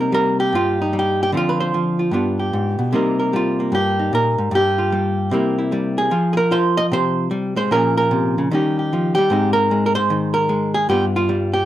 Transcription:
0.00 0.53 C3 medium
0.00 0.11 G3 soft
0.00 1.34 A#3 soft
0.00 0.54 D#4 soft
0.00 0.13 A#4 soft
0.12 0.92 G3 medium
0.12 0.39 A#4 medium
0.40 0.94 G4 medium
0.53 1.33 G2 medium
0.53 0.80 F4 medium
0.82 1.35 D#4 medium
0.93 1.32 G3 medium
0.99 1.22 G4 medium
1.23 1.30 G4 medium
1.32 2.11 D3 medium
1.32 1.73 F3 soft
1.32 2.12 C4 soft
1.37 1.92 F4 medium
1.49 1.59 B4 medium
1.60 2.14 C5 medium
1.74 2.13 F3 medium
1.99 2.12 F4 soft
2.11 2.52 G2 medium
2.11 2.91 B3 soft
2.11 2.91 D4 soft
2.11 2.92 F4 soft
2.39 2.95 G4 soft
2.53 2.78 G#2 medium
2.79 2.93 B2 medium
2.93 3.72 C3 medium
2.93 3.33 G3 soft
2.93 3.59 A#3 soft
2.93 3.34 D#4 soft
2.93 3.19 A#4 soft
3.19 3.74 A#4 soft
3.33 4.81 G3 medium
3.33 3.99 F4 medium
3.60 5.32 A#3 soft
3.72 4.12 G2 medium
3.72 4.13 G4 medium
3.99 4.51 D#4 soft
4.13 4.38 A#2 medium
4.13 4.53 A#4 medium
4.38 4.51 G#2 medium
4.51 5.31 G2 medium
4.51 5.98 G4 medium
4.78 5.30 F4 soft
4.92 5.32 G3 medium
5.31 6.11 C3 medium
5.31 5.71 G3 soft
5.31 6.11 A#3 soft
5.31 5.57 E4 soft
5.58 6.10 E4 soft
5.72 6.10 G3 medium
5.98 6.32 G#4 medium
6.11 7.30 F3 medium
6.11 6.50 F4 soft
6.33 6.37 G#4 medium
6.37 6.91 A#4 medium
6.51 7.69 F4 medium
6.51 6.77 C5 medium
6.77 6.86 D#5 loud
6.92 7.69 C3 medium
6.92 7.56 C5 loud
7.31 7.56 G3 medium
7.56 7.71 G#3 medium
7.56 7.71 C5 medium
7.71 8.49 A#2 medium
7.71 8.51 F3 soft
7.71 8.49 C#4 soft
7.71 8.50 G#4 soft
7.71 7.96 A#4 medium
7.98 8.51 A#4 medium
8.11 8.36 C3 medium
8.38 8.51 C#3 medium
8.51 9.29 D#3 medium
8.51 8.92 G3 soft
8.51 9.30 C#4 soft
8.51 9.30 D#4 soft
8.51 8.79 G4 soft
8.79 9.14 G4 soft
8.93 9.17 F3 medium
9.15 9.31 G3 medium
9.15 9.53 G4 medium
9.30 10.88 G#2 medium
9.30 9.70 G#3 soft
9.30 10.88 C4 soft
9.30 10.89 D#4 soft
9.53 9.85 A#4 medium
9.71 10.48 G#3 medium
9.86 9.95 A#4 medium
9.95 10.33 C5 loud
10.10 10.88 D#3 medium
10.34 10.74 A#4 medium
10.49 10.87 G#3 medium
10.74 10.89 G#4 medium
10.89 11.65 G2 medium
10.89 11.29 G3 soft
10.89 11.65 B3 soft
10.89 11.15 F4 soft
10.89 11.05 G4 medium
11.16 11.65 F4 medium
11.29 11.65 G3 medium
11.54 11.65 G4 medium

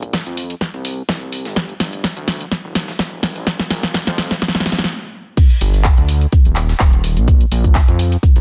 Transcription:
0.00 0.19 A#1 medium
0.00 kick medium
0.00 closed hi-hat medium
0.13 kick loud
0.13 snare loud
0.13 snare medium
0.13 closed hi-hat medium
0.26 0.55 F2 medium
0.26 closed hi-hat soft
0.37 closed hi-hat medium
0.37 open hi-hat loud
0.50 closed hi-hat soft
0.61 kick loud
0.61 snare medium
0.61 closed hi-hat medium
0.74 1.02 C2 medium
0.74 closed hi-hat soft
0.85 closed hi-hat medium
0.85 open hi-hat loud
1.09 1.47 C2 medium
1.09 kick loud
1.09 snare medium
1.09 snare loud
1.09 closed hi-hat medium
1.32 closed hi-hat medium
1.32 open hi-hat loud
1.45 1.74 G1 loud
1.45 snare soft
1.45 closed hi-hat soft
1.56 kick loud
1.56 snare medium
1.56 closed hi-hat medium
1.69 closed hi-hat soft
1.80 2.09 G1 loud
1.80 snare medium
1.80 closed hi-hat medium
1.80 open hi-hat loud
1.93 closed hi-hat soft
2.04 kick loud
2.04 snare loud
2.04 snare medium
2.04 closed hi-hat medium
2.17 2.45 D2 loud
2.17 closed hi-hat soft
2.28 snare medium
2.28 closed hi-hat medium
2.28 open hi-hat loud
2.41 closed hi-hat medium
2.52 kick loud
2.52 snare medium
2.52 closed hi-hat medium
2.64 2.93 D#1 medium
2.75 snare medium
2.75 closed hi-hat medium
2.75 open hi-hat loud
2.88 snare medium
2.99 3.37 D#1 medium
2.99 kick loud
2.99 snare medium
2.99 snare loud
2.99 closed hi-hat medium
3.23 snare medium
3.23 closed hi-hat medium
3.23 open hi-hat loud
3.36 3.64 A#1 loud
3.36 closed hi-hat soft
3.47 kick loud
3.47 snare medium
3.47 closed hi-hat medium
3.60 snare medium
3.60 closed hi-hat soft
3.71 4.00 A#1 loud
3.71 snare medium
3.71 closed hi-hat medium
3.71 open hi-hat loud
3.83 kick medium
3.83 snare medium
3.83 closed hi-hat medium
3.94 kick loud
3.94 snare loud
3.94 closed hi-hat medium
4.07 4.36 F2 loud
4.07 snare medium
4.07 closed hi-hat soft
4.18 snare medium
4.18 closed hi-hat medium
4.18 open hi-hat loud
4.31 snare medium
4.31 closed hi-hat medium
4.31 closed hi-hat soft
4.42 kick loud
4.42 snare loud
4.42 closed hi-hat medium
4.48 snare medium
4.55 4.83 C2 medium
4.55 snare medium
4.55 closed hi-hat soft
4.60 snare medium
4.66 snare loud
4.66 closed hi-hat medium
4.66 open hi-hat loud
4.72 snare medium
4.79 snare medium
4.79 closed hi-hat soft
4.84 snare medium
5.37 kick loud
5.37 closed hi-hat medium
5.37 crash loud
5.37 shaker soft
5.50 closed hi-hat soft
5.50 shaker soft
5.61 5.90 G1 loud
5.61 closed hi-hat medium
5.61 open hi-hat loud
5.61 shaker medium
5.74 closed hi-hat soft
5.74 shaker soft
5.84 kick loud
5.84 snare loud
5.84 clap loud
5.84 closed hi-hat medium
5.84 shaker soft
5.98 6.26 D2 loud
5.98 closed hi-hat soft
5.98 shaker soft
6.09 closed hi-hat medium
6.09 open hi-hat loud
6.09 shaker medium
6.21 closed hi-hat soft
6.21 shaker soft
6.32 kick loud
6.32 closed hi-hat medium
6.32 shaker soft
6.45 6.74 D#1 medium
6.45 closed hi-hat soft
6.45 shaker soft
6.56 clap medium
6.56 closed hi-hat medium
6.56 open hi-hat loud
6.56 shaker medium
6.69 snare medium
6.69 closed hi-hat soft
6.69 shaker soft
6.80 7.18 D#1 medium
6.80 kick loud
6.80 snare loud
6.80 clap loud
6.80 closed hi-hat medium
6.80 shaker soft
6.93 closed hi-hat soft
6.93 shaker soft
7.04 closed hi-hat medium
7.04 open hi-hat loud
7.04 shaker medium
7.17 7.45 A#1 loud
7.17 closed hi-hat soft
7.17 shaker soft
7.28 kick loud
7.28 closed hi-hat medium
7.28 shaker soft
7.41 closed hi-hat soft
7.41 shaker soft
7.52 7.81 A#1 loud
7.52 closed hi-hat medium
7.52 open hi-hat loud
7.52 shaker medium
7.64 kick medium
7.64 closed hi-hat soft
7.64 shaker soft
7.75 kick loud
7.75 snare loud
7.75 clap loud
7.75 closed hi-hat medium
7.75 shaker soft
7.88 8.17 F2 loud
7.88 closed hi-hat soft
7.88 shaker soft
7.99 closed hi-hat medium
7.99 open hi-hat loud
7.99 shaker medium
8.12 closed hi-hat soft
8.12 shaker soft
8.23 kick loud
8.23 closed hi-hat medium
8.23 shaker soft
8.36 8.41 C2 loud
8.36 closed hi-hat soft
8.36 shaker soft

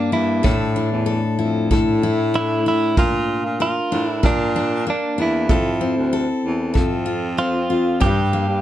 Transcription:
0.00 0.43 G2 medium
0.00 0.51 A#3 medium
0.00 0.11 D4 medium
0.00 0.12 D4 medium
0.00 0.43 G4 medium
0.12 0.42 G2 medium
0.12 0.76 D4 medium
0.12 1.98 E4 medium
0.43 2.96 A2 medium
0.43 0.88 A2 medium
0.43 1.05 A4 medium
0.43 kick loud
0.76 2.34 D4 medium
0.92 1.21 E2 medium
1.06 1.70 A4 medium
1.39 1.68 F2 medium
1.39 2.02 E4 medium
1.71 2.61 A2 loud
1.71 2.97 A4 medium
1.71 kick medium
2.03 2.65 E4 medium
2.34 3.92 D4 medium
2.34 2.67 E4 medium
2.66 2.95 A2 medium
2.66 3.04 E4 medium
2.66 2.98 E4 loud
2.97 3.41 A#2 loud
2.97 3.61 F4 medium
2.97 3.59 A#4 medium
2.97 kick loud
3.45 3.74 A#2 medium
3.60 4.08 F4 loud
3.60 4.22 A#4 medium
3.92 4.21 A2 medium
3.92 4.55 D4 medium
4.08 4.26 E4 loud
4.23 4.88 A#2 loud
4.23 4.84 D4 medium
4.23 5.49 A#4 medium
4.23 kick loud
4.56 5.17 D4 medium
4.87 5.56 A#3 medium
4.87 5.21 D4 medium
5.18 5.47 E2 medium
5.18 5.56 D4 medium
5.18 7.05 E4 medium
5.49 5.93 F2 loud
5.49 6.11 A4 medium
5.49 kick loud
5.81 7.37 C4 medium
5.97 6.26 D2 medium
6.13 6.72 A4 medium
6.45 6.73 E2 medium
6.74 7.66 F2 medium
6.74 8.01 A4 medium
6.74 kick medium
7.06 7.69 F4 medium
7.38 8.08 C4 medium
7.38 7.98 F4 medium
7.70 7.99 F2 medium
7.70 8.08 F4 soft
8.01 8.62 G2 medium
8.01 8.45 G2 loud
8.01 8.62 G4 medium
8.01 8.61 G4 medium
8.01 kick loud
8.33 8.62 A#3 medium
8.48 8.62 G2 medium

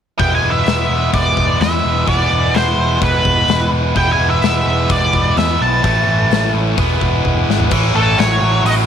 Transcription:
0.18 0.38 E1 medium
0.18 2.06 E3 medium
0.18 2.07 G#3 medium
0.18 2.08 B3 medium
0.18 2.09 E4 medium
0.18 0.34 G5 medium
0.18 kick medium
0.18 open hi-hat soft
0.35 0.51 G#5 medium
0.43 0.62 E1 medium
0.51 1.09 E5 medium
0.66 0.85 E1 medium
0.66 snare medium
0.66 open hi-hat soft
0.89 1.09 E1 medium
1.13 1.32 E1 medium
1.13 1.61 D5 medium
1.13 kick loud
1.13 open hi-hat soft
1.37 1.56 E1 medium
1.37 kick medium
1.60 1.79 E2 medium
1.60 2.08 E5 medium
1.60 snare loud
1.60 open hi-hat medium
1.85 2.03 E1 medium
2.06 2.26 E1 medium
2.06 3.95 E3 medium
2.06 3.94 G#3 medium
2.06 3.95 B3 medium
2.06 3.98 E4 medium
2.06 2.56 D5 medium
2.06 kick medium
2.06 open hi-hat soft
2.31 2.50 E1 medium
2.54 2.74 E1 medium
2.54 2.98 C5 medium
2.54 snare loud
2.54 open hi-hat soft
2.78 2.97 E1 medium
3.02 3.21 E1 medium
3.02 3.69 B4 medium
3.02 kick loud
3.02 open hi-hat soft
3.25 3.44 E1 medium
3.25 kick medium
3.48 3.67 E1 medium
3.48 snare loud
3.48 open hi-hat soft
3.71 3.91 E1 medium
3.95 4.15 E1 medium
3.95 5.84 E3 medium
3.95 5.83 G#3 medium
3.95 5.83 B3 medium
3.95 5.86 E4 medium
3.95 4.11 G5 medium
3.95 kick medium
3.95 open hi-hat soft
4.13 4.28 G#5 medium
4.18 4.38 E1 medium
4.30 4.91 E5 medium
4.42 4.61 E1 medium
4.42 snare medium
4.42 open hi-hat soft
4.66 4.85 E1 medium
4.89 5.09 E1 medium
4.89 5.34 D5 medium
4.89 kick loud
4.89 open hi-hat medium
5.13 5.32 E1 medium
5.13 kick medium
5.37 5.56 E2 medium
5.37 5.59 E5 medium
5.37 snare medium
5.37 open hi-hat soft
5.61 5.80 B1 medium
5.61 6.51 A5 medium
5.83 6.03 A1 medium
5.83 6.76 A2 medium
5.83 6.76 E3 medium
5.83 6.77 A3 medium
5.83 6.77 C#4 medium
5.83 6.78 E4 medium
5.83 kick medium
5.83 open hi-hat soft
6.07 6.26 A1 medium
6.30 6.50 A1 medium
6.30 snare loud
6.30 open hi-hat soft
6.54 6.73 A1 medium
6.77 6.97 E1 medium
6.77 7.70 E3 medium
6.77 7.71 G#3 medium
6.77 7.71 B3 medium
6.77 7.72 E4 medium
6.77 kick loud
6.77 open hi-hat soft
7.01 7.20 E1 medium
7.01 kick medium
7.25 7.44 E1 medium
7.25 kick medium
7.49 7.68 G#1 medium
7.49 snare medium
7.60 floor tom medium
7.71 7.90 A1 medium
7.71 7.93 A2 medium
7.71 7.93 E3 medium
7.71 kick medium
7.71 crash medium
7.95 8.14 A1 medium
7.95 8.16 A2 medium
7.95 8.17 E3 medium
7.95 8.20 A4 medium
8.18 8.38 A1 medium
8.18 8.40 A2 medium
8.18 8.40 F#3 medium
8.18 8.63 C#5 medium
8.18 snare loud
8.18 open hi-hat medium
8.41 8.60 A1 medium
8.41 8.63 A2 medium
8.41 8.63 F#3 medium
8.64 8.83 A1 medium
8.64 8.86 A2 medium
8.64 8.86 F#3 medium
8.64 8.73 D#5 medium
8.64 open hi-hat medium

